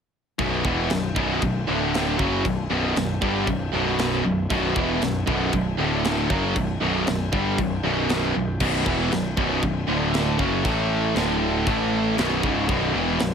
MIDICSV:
0, 0, Header, 1, 4, 480
1, 0, Start_track
1, 0, Key_signature, 2, "minor"
1, 0, Tempo, 512383
1, 371, Time_signature, 4, 2, 24, 8
1, 12498, End_track
2, 0, Start_track
2, 0, Title_t, "Distorted electric guitar"
2, 0, Program_c, 0, 30
2, 362, Note_on_c, 0, 35, 110
2, 367, Note_on_c, 0, 42, 92
2, 372, Note_on_c, 0, 47, 117
2, 597, Note_off_c, 0, 47, 0
2, 600, Note_off_c, 0, 35, 0
2, 602, Note_off_c, 0, 42, 0
2, 608, Note_on_c, 0, 47, 91
2, 611, Note_on_c, 0, 40, 93
2, 618, Note_on_c, 0, 52, 99
2, 843, Note_off_c, 0, 47, 0
2, 844, Note_off_c, 0, 40, 0
2, 848, Note_off_c, 0, 52, 0
2, 857, Note_on_c, 0, 35, 68
2, 861, Note_on_c, 0, 42, 84
2, 1046, Note_off_c, 0, 35, 0
2, 1049, Note_off_c, 0, 42, 0
2, 1087, Note_on_c, 0, 35, 80
2, 1091, Note_on_c, 0, 42, 82
2, 1095, Note_on_c, 0, 47, 101
2, 1323, Note_off_c, 0, 35, 0
2, 1325, Note_off_c, 0, 42, 0
2, 1326, Note_off_c, 0, 47, 0
2, 1333, Note_on_c, 0, 35, 66
2, 1335, Note_on_c, 0, 42, 74
2, 1525, Note_off_c, 0, 35, 0
2, 1526, Note_off_c, 0, 42, 0
2, 1575, Note_on_c, 0, 38, 74
2, 1580, Note_on_c, 0, 45, 86
2, 1587, Note_on_c, 0, 50, 90
2, 2047, Note_off_c, 0, 38, 0
2, 2050, Note_off_c, 0, 45, 0
2, 2053, Note_on_c, 0, 42, 99
2, 2054, Note_off_c, 0, 50, 0
2, 2059, Note_on_c, 0, 49, 104
2, 2060, Note_on_c, 0, 54, 106
2, 2286, Note_off_c, 0, 42, 0
2, 2289, Note_off_c, 0, 49, 0
2, 2290, Note_off_c, 0, 54, 0
2, 2297, Note_on_c, 0, 42, 75
2, 2299, Note_on_c, 0, 35, 76
2, 2487, Note_off_c, 0, 42, 0
2, 2488, Note_off_c, 0, 35, 0
2, 2533, Note_on_c, 0, 35, 97
2, 2541, Note_on_c, 0, 42, 108
2, 2541, Note_on_c, 0, 47, 111
2, 2757, Note_off_c, 0, 35, 0
2, 2765, Note_off_c, 0, 42, 0
2, 2769, Note_on_c, 0, 35, 81
2, 2770, Note_off_c, 0, 47, 0
2, 2777, Note_on_c, 0, 42, 87
2, 2964, Note_off_c, 0, 35, 0
2, 2968, Note_off_c, 0, 42, 0
2, 3018, Note_on_c, 0, 43, 85
2, 3021, Note_on_c, 0, 50, 98
2, 3027, Note_on_c, 0, 55, 101
2, 3249, Note_off_c, 0, 43, 0
2, 3251, Note_off_c, 0, 50, 0
2, 3254, Note_off_c, 0, 55, 0
2, 3260, Note_on_c, 0, 35, 65
2, 3265, Note_on_c, 0, 42, 74
2, 3450, Note_off_c, 0, 35, 0
2, 3452, Note_off_c, 0, 42, 0
2, 3504, Note_on_c, 0, 35, 86
2, 3508, Note_on_c, 0, 42, 81
2, 3510, Note_on_c, 0, 47, 87
2, 3967, Note_off_c, 0, 35, 0
2, 3973, Note_off_c, 0, 42, 0
2, 3976, Note_off_c, 0, 47, 0
2, 3978, Note_on_c, 0, 35, 72
2, 3984, Note_on_c, 0, 42, 83
2, 4169, Note_off_c, 0, 35, 0
2, 4172, Note_off_c, 0, 42, 0
2, 4222, Note_on_c, 0, 35, 111
2, 4227, Note_on_c, 0, 47, 126
2, 4229, Note_on_c, 0, 42, 93
2, 4449, Note_off_c, 0, 47, 0
2, 4452, Note_off_c, 0, 35, 0
2, 4455, Note_off_c, 0, 42, 0
2, 4460, Note_on_c, 0, 40, 98
2, 4460, Note_on_c, 0, 47, 89
2, 4469, Note_on_c, 0, 52, 106
2, 4691, Note_off_c, 0, 40, 0
2, 4691, Note_off_c, 0, 47, 0
2, 4695, Note_off_c, 0, 52, 0
2, 4699, Note_on_c, 0, 35, 75
2, 4708, Note_on_c, 0, 42, 81
2, 4890, Note_off_c, 0, 35, 0
2, 4894, Note_off_c, 0, 42, 0
2, 4933, Note_on_c, 0, 35, 98
2, 4937, Note_on_c, 0, 42, 94
2, 4941, Note_on_c, 0, 47, 120
2, 5168, Note_off_c, 0, 35, 0
2, 5168, Note_off_c, 0, 42, 0
2, 5172, Note_off_c, 0, 47, 0
2, 5178, Note_on_c, 0, 35, 61
2, 5179, Note_on_c, 0, 42, 86
2, 5370, Note_off_c, 0, 35, 0
2, 5370, Note_off_c, 0, 42, 0
2, 5418, Note_on_c, 0, 38, 84
2, 5422, Note_on_c, 0, 45, 90
2, 5425, Note_on_c, 0, 50, 98
2, 5891, Note_off_c, 0, 38, 0
2, 5892, Note_off_c, 0, 45, 0
2, 5894, Note_off_c, 0, 50, 0
2, 5904, Note_on_c, 0, 42, 101
2, 5906, Note_on_c, 0, 49, 103
2, 5910, Note_on_c, 0, 54, 107
2, 6128, Note_off_c, 0, 42, 0
2, 6135, Note_off_c, 0, 49, 0
2, 6137, Note_off_c, 0, 54, 0
2, 6138, Note_on_c, 0, 35, 66
2, 6140, Note_on_c, 0, 42, 73
2, 6330, Note_off_c, 0, 35, 0
2, 6331, Note_off_c, 0, 42, 0
2, 6384, Note_on_c, 0, 35, 99
2, 6388, Note_on_c, 0, 42, 102
2, 6394, Note_on_c, 0, 47, 116
2, 6613, Note_off_c, 0, 35, 0
2, 6615, Note_off_c, 0, 42, 0
2, 6619, Note_off_c, 0, 47, 0
2, 6627, Note_on_c, 0, 35, 80
2, 6629, Note_on_c, 0, 42, 76
2, 6814, Note_off_c, 0, 35, 0
2, 6815, Note_off_c, 0, 42, 0
2, 6862, Note_on_c, 0, 43, 102
2, 6865, Note_on_c, 0, 50, 98
2, 6871, Note_on_c, 0, 55, 101
2, 7093, Note_off_c, 0, 43, 0
2, 7094, Note_off_c, 0, 50, 0
2, 7097, Note_off_c, 0, 55, 0
2, 7109, Note_on_c, 0, 35, 72
2, 7113, Note_on_c, 0, 42, 67
2, 7295, Note_off_c, 0, 35, 0
2, 7297, Note_off_c, 0, 42, 0
2, 7341, Note_on_c, 0, 35, 83
2, 7347, Note_on_c, 0, 42, 96
2, 7351, Note_on_c, 0, 47, 87
2, 7812, Note_off_c, 0, 35, 0
2, 7815, Note_off_c, 0, 42, 0
2, 7817, Note_off_c, 0, 47, 0
2, 7827, Note_on_c, 0, 35, 81
2, 7833, Note_on_c, 0, 42, 82
2, 8014, Note_off_c, 0, 35, 0
2, 8017, Note_off_c, 0, 42, 0
2, 8062, Note_on_c, 0, 35, 96
2, 8064, Note_on_c, 0, 42, 98
2, 8075, Note_on_c, 0, 47, 120
2, 8285, Note_off_c, 0, 47, 0
2, 8290, Note_off_c, 0, 35, 0
2, 8292, Note_off_c, 0, 42, 0
2, 8294, Note_on_c, 0, 40, 103
2, 8296, Note_on_c, 0, 47, 86
2, 8305, Note_on_c, 0, 52, 98
2, 8528, Note_off_c, 0, 40, 0
2, 8529, Note_off_c, 0, 47, 0
2, 8534, Note_off_c, 0, 52, 0
2, 8538, Note_on_c, 0, 35, 70
2, 8539, Note_on_c, 0, 42, 78
2, 8730, Note_off_c, 0, 35, 0
2, 8730, Note_off_c, 0, 42, 0
2, 8778, Note_on_c, 0, 35, 96
2, 8787, Note_on_c, 0, 47, 95
2, 8788, Note_on_c, 0, 42, 99
2, 9008, Note_off_c, 0, 35, 0
2, 9009, Note_off_c, 0, 42, 0
2, 9015, Note_off_c, 0, 47, 0
2, 9019, Note_on_c, 0, 35, 69
2, 9020, Note_on_c, 0, 42, 74
2, 9210, Note_off_c, 0, 35, 0
2, 9210, Note_off_c, 0, 42, 0
2, 9254, Note_on_c, 0, 38, 90
2, 9260, Note_on_c, 0, 45, 94
2, 9266, Note_on_c, 0, 50, 90
2, 9724, Note_off_c, 0, 38, 0
2, 9728, Note_on_c, 0, 42, 101
2, 9731, Note_off_c, 0, 45, 0
2, 9733, Note_off_c, 0, 50, 0
2, 9735, Note_on_c, 0, 49, 116
2, 9737, Note_on_c, 0, 54, 123
2, 9957, Note_off_c, 0, 42, 0
2, 9960, Note_on_c, 0, 45, 105
2, 9961, Note_off_c, 0, 49, 0
2, 9963, Note_off_c, 0, 54, 0
2, 9965, Note_on_c, 0, 52, 115
2, 9967, Note_on_c, 0, 57, 120
2, 10436, Note_off_c, 0, 45, 0
2, 10442, Note_on_c, 0, 38, 106
2, 10443, Note_off_c, 0, 52, 0
2, 10444, Note_off_c, 0, 57, 0
2, 10447, Note_on_c, 0, 45, 100
2, 10452, Note_on_c, 0, 50, 111
2, 10915, Note_off_c, 0, 45, 0
2, 10921, Note_off_c, 0, 38, 0
2, 10926, Note_off_c, 0, 50, 0
2, 10926, Note_on_c, 0, 45, 94
2, 10930, Note_on_c, 0, 52, 106
2, 10934, Note_on_c, 0, 57, 118
2, 11397, Note_off_c, 0, 45, 0
2, 11401, Note_on_c, 0, 35, 100
2, 11404, Note_off_c, 0, 52, 0
2, 11407, Note_off_c, 0, 57, 0
2, 11407, Note_on_c, 0, 42, 101
2, 11412, Note_on_c, 0, 47, 93
2, 11640, Note_off_c, 0, 35, 0
2, 11643, Note_off_c, 0, 42, 0
2, 11645, Note_on_c, 0, 37, 105
2, 11646, Note_off_c, 0, 47, 0
2, 11648, Note_on_c, 0, 44, 106
2, 11651, Note_on_c, 0, 49, 106
2, 11879, Note_off_c, 0, 37, 0
2, 11883, Note_off_c, 0, 44, 0
2, 11883, Note_on_c, 0, 35, 100
2, 11885, Note_off_c, 0, 49, 0
2, 11887, Note_on_c, 0, 42, 104
2, 11890, Note_on_c, 0, 47, 108
2, 12115, Note_off_c, 0, 47, 0
2, 12119, Note_off_c, 0, 35, 0
2, 12122, Note_off_c, 0, 42, 0
2, 12123, Note_on_c, 0, 40, 93
2, 12126, Note_on_c, 0, 47, 109
2, 12130, Note_on_c, 0, 52, 108
2, 12360, Note_off_c, 0, 40, 0
2, 12362, Note_off_c, 0, 47, 0
2, 12364, Note_off_c, 0, 52, 0
2, 12370, Note_on_c, 0, 35, 65
2, 12376, Note_on_c, 0, 42, 82
2, 12498, Note_off_c, 0, 35, 0
2, 12498, Note_off_c, 0, 42, 0
2, 12498, End_track
3, 0, Start_track
3, 0, Title_t, "Picked electric bass"
3, 0, Program_c, 1, 34
3, 367, Note_on_c, 1, 23, 92
3, 592, Note_off_c, 1, 23, 0
3, 609, Note_on_c, 1, 28, 98
3, 834, Note_off_c, 1, 28, 0
3, 862, Note_on_c, 1, 23, 86
3, 1081, Note_off_c, 1, 23, 0
3, 1090, Note_on_c, 1, 23, 99
3, 1314, Note_off_c, 1, 23, 0
3, 1338, Note_on_c, 1, 23, 86
3, 1559, Note_off_c, 1, 23, 0
3, 1574, Note_on_c, 1, 26, 98
3, 2020, Note_off_c, 1, 26, 0
3, 2058, Note_on_c, 1, 30, 100
3, 2279, Note_off_c, 1, 30, 0
3, 2295, Note_on_c, 1, 23, 85
3, 2518, Note_off_c, 1, 23, 0
3, 2531, Note_on_c, 1, 23, 107
3, 2756, Note_off_c, 1, 23, 0
3, 2775, Note_on_c, 1, 23, 82
3, 2998, Note_off_c, 1, 23, 0
3, 3015, Note_on_c, 1, 31, 98
3, 3238, Note_off_c, 1, 31, 0
3, 3262, Note_on_c, 1, 23, 76
3, 3482, Note_off_c, 1, 23, 0
3, 3495, Note_on_c, 1, 23, 94
3, 3942, Note_off_c, 1, 23, 0
3, 3978, Note_on_c, 1, 23, 73
3, 4200, Note_off_c, 1, 23, 0
3, 4221, Note_on_c, 1, 23, 92
3, 4442, Note_off_c, 1, 23, 0
3, 4459, Note_on_c, 1, 28, 102
3, 4681, Note_off_c, 1, 28, 0
3, 4703, Note_on_c, 1, 23, 86
3, 4923, Note_off_c, 1, 23, 0
3, 4942, Note_on_c, 1, 23, 102
3, 5163, Note_off_c, 1, 23, 0
3, 5185, Note_on_c, 1, 23, 76
3, 5404, Note_off_c, 1, 23, 0
3, 5416, Note_on_c, 1, 26, 104
3, 5863, Note_off_c, 1, 26, 0
3, 5906, Note_on_c, 1, 30, 108
3, 6125, Note_off_c, 1, 30, 0
3, 6146, Note_on_c, 1, 23, 75
3, 6365, Note_off_c, 1, 23, 0
3, 6387, Note_on_c, 1, 23, 102
3, 6606, Note_off_c, 1, 23, 0
3, 6629, Note_on_c, 1, 23, 83
3, 6847, Note_off_c, 1, 23, 0
3, 6868, Note_on_c, 1, 31, 109
3, 7086, Note_off_c, 1, 31, 0
3, 7109, Note_on_c, 1, 23, 86
3, 7327, Note_off_c, 1, 23, 0
3, 7345, Note_on_c, 1, 23, 107
3, 7788, Note_off_c, 1, 23, 0
3, 7840, Note_on_c, 1, 23, 88
3, 8053, Note_off_c, 1, 23, 0
3, 8064, Note_on_c, 1, 23, 96
3, 8284, Note_off_c, 1, 23, 0
3, 8302, Note_on_c, 1, 28, 99
3, 8523, Note_off_c, 1, 28, 0
3, 8547, Note_on_c, 1, 23, 75
3, 8766, Note_off_c, 1, 23, 0
3, 8785, Note_on_c, 1, 23, 101
3, 9004, Note_off_c, 1, 23, 0
3, 9020, Note_on_c, 1, 23, 87
3, 9242, Note_off_c, 1, 23, 0
3, 9258, Note_on_c, 1, 26, 108
3, 9703, Note_off_c, 1, 26, 0
3, 9740, Note_on_c, 1, 30, 106
3, 9961, Note_off_c, 1, 30, 0
3, 9980, Note_on_c, 1, 33, 91
3, 10424, Note_off_c, 1, 33, 0
3, 10457, Note_on_c, 1, 26, 95
3, 10902, Note_off_c, 1, 26, 0
3, 10938, Note_on_c, 1, 33, 112
3, 11382, Note_off_c, 1, 33, 0
3, 11410, Note_on_c, 1, 23, 97
3, 11635, Note_off_c, 1, 23, 0
3, 11652, Note_on_c, 1, 25, 95
3, 11876, Note_off_c, 1, 25, 0
3, 11894, Note_on_c, 1, 23, 90
3, 12113, Note_off_c, 1, 23, 0
3, 12118, Note_on_c, 1, 28, 102
3, 12348, Note_off_c, 1, 28, 0
3, 12368, Note_on_c, 1, 23, 86
3, 12498, Note_off_c, 1, 23, 0
3, 12498, End_track
4, 0, Start_track
4, 0, Title_t, "Drums"
4, 365, Note_on_c, 9, 36, 112
4, 366, Note_on_c, 9, 52, 61
4, 459, Note_off_c, 9, 36, 0
4, 460, Note_off_c, 9, 52, 0
4, 606, Note_on_c, 9, 36, 110
4, 700, Note_off_c, 9, 36, 0
4, 842, Note_on_c, 9, 52, 70
4, 852, Note_on_c, 9, 38, 112
4, 936, Note_off_c, 9, 52, 0
4, 945, Note_off_c, 9, 38, 0
4, 1089, Note_on_c, 9, 36, 116
4, 1182, Note_off_c, 9, 36, 0
4, 1331, Note_on_c, 9, 36, 87
4, 1336, Note_on_c, 9, 52, 61
4, 1425, Note_off_c, 9, 36, 0
4, 1429, Note_off_c, 9, 52, 0
4, 1820, Note_on_c, 9, 52, 67
4, 1830, Note_on_c, 9, 38, 112
4, 1914, Note_off_c, 9, 52, 0
4, 1923, Note_off_c, 9, 38, 0
4, 2054, Note_on_c, 9, 36, 104
4, 2148, Note_off_c, 9, 36, 0
4, 2296, Note_on_c, 9, 36, 92
4, 2303, Note_on_c, 9, 52, 64
4, 2389, Note_off_c, 9, 36, 0
4, 2397, Note_off_c, 9, 52, 0
4, 2776, Note_on_c, 9, 52, 59
4, 2785, Note_on_c, 9, 38, 119
4, 2870, Note_off_c, 9, 52, 0
4, 2879, Note_off_c, 9, 38, 0
4, 3015, Note_on_c, 9, 36, 118
4, 3108, Note_off_c, 9, 36, 0
4, 3253, Note_on_c, 9, 52, 57
4, 3254, Note_on_c, 9, 36, 86
4, 3347, Note_off_c, 9, 36, 0
4, 3347, Note_off_c, 9, 52, 0
4, 3735, Note_on_c, 9, 52, 58
4, 3744, Note_on_c, 9, 38, 127
4, 3829, Note_off_c, 9, 52, 0
4, 3838, Note_off_c, 9, 38, 0
4, 4219, Note_on_c, 9, 36, 106
4, 4219, Note_on_c, 9, 52, 63
4, 4312, Note_off_c, 9, 36, 0
4, 4313, Note_off_c, 9, 52, 0
4, 4459, Note_on_c, 9, 36, 123
4, 4553, Note_off_c, 9, 36, 0
4, 4700, Note_on_c, 9, 52, 65
4, 4709, Note_on_c, 9, 38, 99
4, 4793, Note_off_c, 9, 52, 0
4, 4803, Note_off_c, 9, 38, 0
4, 4941, Note_on_c, 9, 36, 115
4, 5035, Note_off_c, 9, 36, 0
4, 5177, Note_on_c, 9, 52, 62
4, 5182, Note_on_c, 9, 36, 86
4, 5271, Note_off_c, 9, 52, 0
4, 5275, Note_off_c, 9, 36, 0
4, 5663, Note_on_c, 9, 52, 71
4, 5673, Note_on_c, 9, 38, 116
4, 5757, Note_off_c, 9, 52, 0
4, 5766, Note_off_c, 9, 38, 0
4, 5903, Note_on_c, 9, 36, 118
4, 5997, Note_off_c, 9, 36, 0
4, 6144, Note_on_c, 9, 52, 63
4, 6145, Note_on_c, 9, 36, 91
4, 6238, Note_off_c, 9, 52, 0
4, 6239, Note_off_c, 9, 36, 0
4, 6622, Note_on_c, 9, 52, 62
4, 6631, Note_on_c, 9, 38, 119
4, 6716, Note_off_c, 9, 52, 0
4, 6725, Note_off_c, 9, 38, 0
4, 6864, Note_on_c, 9, 36, 115
4, 6958, Note_off_c, 9, 36, 0
4, 7105, Note_on_c, 9, 36, 92
4, 7109, Note_on_c, 9, 52, 63
4, 7199, Note_off_c, 9, 36, 0
4, 7203, Note_off_c, 9, 52, 0
4, 7582, Note_on_c, 9, 52, 66
4, 7591, Note_on_c, 9, 38, 124
4, 7676, Note_off_c, 9, 52, 0
4, 7685, Note_off_c, 9, 38, 0
4, 8058, Note_on_c, 9, 49, 108
4, 8058, Note_on_c, 9, 52, 60
4, 8061, Note_on_c, 9, 36, 105
4, 8152, Note_off_c, 9, 49, 0
4, 8152, Note_off_c, 9, 52, 0
4, 8155, Note_off_c, 9, 36, 0
4, 8301, Note_on_c, 9, 36, 104
4, 8395, Note_off_c, 9, 36, 0
4, 8541, Note_on_c, 9, 52, 57
4, 8551, Note_on_c, 9, 38, 102
4, 8635, Note_off_c, 9, 52, 0
4, 8644, Note_off_c, 9, 38, 0
4, 8781, Note_on_c, 9, 36, 109
4, 8874, Note_off_c, 9, 36, 0
4, 9019, Note_on_c, 9, 36, 91
4, 9020, Note_on_c, 9, 52, 58
4, 9113, Note_off_c, 9, 36, 0
4, 9114, Note_off_c, 9, 52, 0
4, 9499, Note_on_c, 9, 52, 68
4, 9508, Note_on_c, 9, 38, 117
4, 9593, Note_off_c, 9, 52, 0
4, 9602, Note_off_c, 9, 38, 0
4, 9735, Note_on_c, 9, 36, 103
4, 9829, Note_off_c, 9, 36, 0
4, 9976, Note_on_c, 9, 36, 107
4, 9983, Note_on_c, 9, 52, 69
4, 10070, Note_off_c, 9, 36, 0
4, 10077, Note_off_c, 9, 52, 0
4, 10454, Note_on_c, 9, 52, 64
4, 10463, Note_on_c, 9, 38, 110
4, 10547, Note_off_c, 9, 52, 0
4, 10557, Note_off_c, 9, 38, 0
4, 10931, Note_on_c, 9, 36, 106
4, 10933, Note_on_c, 9, 52, 58
4, 11025, Note_off_c, 9, 36, 0
4, 11027, Note_off_c, 9, 52, 0
4, 11411, Note_on_c, 9, 52, 66
4, 11420, Note_on_c, 9, 38, 121
4, 11504, Note_off_c, 9, 52, 0
4, 11514, Note_off_c, 9, 38, 0
4, 11648, Note_on_c, 9, 36, 100
4, 11742, Note_off_c, 9, 36, 0
4, 11887, Note_on_c, 9, 36, 108
4, 11888, Note_on_c, 9, 52, 59
4, 11981, Note_off_c, 9, 36, 0
4, 11982, Note_off_c, 9, 52, 0
4, 12361, Note_on_c, 9, 52, 59
4, 12370, Note_on_c, 9, 38, 114
4, 12454, Note_off_c, 9, 52, 0
4, 12464, Note_off_c, 9, 38, 0
4, 12498, End_track
0, 0, End_of_file